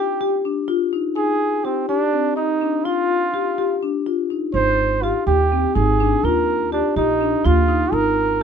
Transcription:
Already playing: G4
0.21 G4
0.45 D4
0.68 F4
0.93 D#4
1.16 D#4 G#4
1.65 C4 G4
1.89 D4 G4
2.13 C4
2.36 D#4
2.61 D4
2.85 F4
3.34 G4
3.58 G4
3.83 D4
4.06 F4
4.30 D#4
4.54 G#1 D#4 C5
5.02 F4 G4
5.27 D#2 G4
5.52 C4
5.75 G#1 D#4 G#4
6.00 D4
6.23 D#2 F4 A#4
6.72 D4 G4
6.96 A#1 D#4 G4
7.21 D4
7.45 D#2 F4
7.68 D#4
7.92 G#1 D#4 A#4

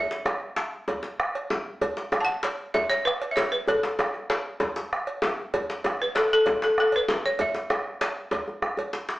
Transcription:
Already playing: E5
0.11 bombo rim, djembe slap
0.25 bombo rim, cowbell, djembe slap, djembe tone
0.56 djembe slap
0.72 djembe slap
0.88 bombo rim, bombo low, cowbell, djembe tone, djembe bass
1.03 djembe slap
1.19 bombo rim, djembe slap
1.35 cowbell
1.50 bombo rim, djembe slap, djembe tone
1.81 bombo low, cowbell, djembe bass
1.97 bombo rim, djembe slap
2.12 bombo rim, cowbell, djembe tone
2.21 A5
2.25 F#5, djembe slap
2.43 cowbell, djembe slap
2.74 E5, bombo low, cowbell, djembe slap, djembe tone, djembe bass
2.90 C#5, djembe slap
3.05 B4, bombo rim
3.22 cowbell
3.31 E5
3.36 C#5, djembe slap, djembe tone
3.52 B4
3.67 A4, bombo low, cowbell, djembe bass
3.83 bombo rim, djembe slap
3.99 bombo rim, cowbell, djembe tone
4.14 djembe slap
4.30 cowbell, djembe slap
4.60 bombo low, cowbell, djembe slap, djembe tone, djembe bass
4.76 djembe slap
4.93 bombo rim
5.07 cowbell
5.22 djembe slap, djembe tone
5.54 bombo low, cowbell, djembe bass
5.70 bombo rim, djembe slap
5.84 bombo rim, cowbell, djembe tone
6.00 B4, djembe slap
6.15 A4, cowbell, djembe slap
6.33 A4
6.46 bombo low, cowbell, djembe slap, djembe tone, djembe bass
6.62 A4, djembe slap
6.78 A4, bombo rim
6.92 B4, cowbell
7.08 djembe slap, djembe tone
7.26 C#5
7.39 E5, bombo low, cowbell, djembe slap, djembe bass
7.54 djembe slap
7.70 bombo rim, cowbell, djembe tone
8.01 bombo rim, cowbell, djembe slap
8.16 bombo rim
8.31 bombo rim, bombo low, cowbell, djembe tone, djembe bass
8.48 bombo rim, djembe bass
8.62 bombo rim, djembe bass
8.77 bombo rim, cowbell, djembe bass
8.93 djembe slap
9.09 djembe slap

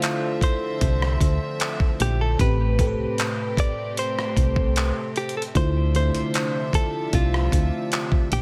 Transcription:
Already playing: D3 F3 A3 C4 E4 F4 A4 C5 E5
0.02 clap, closed hi-hat
0.41 C5, kick, closed hi-hat
0.81 C2, kick, closed hi-hat
1.02 cross-stick
1.21 D2, kick, closed hi-hat
1.60 clap, closed hi-hat
1.80 kick
2.00 A#1 G4, closed hi-hat
2.21 A4
2.39 A1 A2 C3 A3 C4 G4 B4, kick, closed hi-hat
2.79 A2 A3 C4 G4 A4, kick, closed hi-hat
2.87 B4
2.99 C2
3.18 clap, closed hi-hat
3.57 D5, kick, closed hi-hat
3.97 C5, closed hi-hat
4.19 cross-stick
4.37 C2, kick, closed hi-hat
4.56 kick
4.76 clap, closed hi-hat
5.16 G4, closed hi-hat
5.29 closed hi-hat
5.37 A4
5.42 closed hi-hat
5.55 D2 C3 D3 F3 A3 D4 E4 F4 C5 E5, kick, closed hi-hat
5.94 D3 A3 E4 F4 C5, closed hi-hat
6.15 C2, closed hi-hat
6.34 clap, closed hi-hat
6.73 A4, kick, closed hi-hat
7.13 C2 F4, kick, closed hi-hat
7.34 cross-stick
7.52 D2, kick, closed hi-hat
7.92 clap, closed hi-hat
8.12 kick
8.32 A#1 G4, closed hi-hat

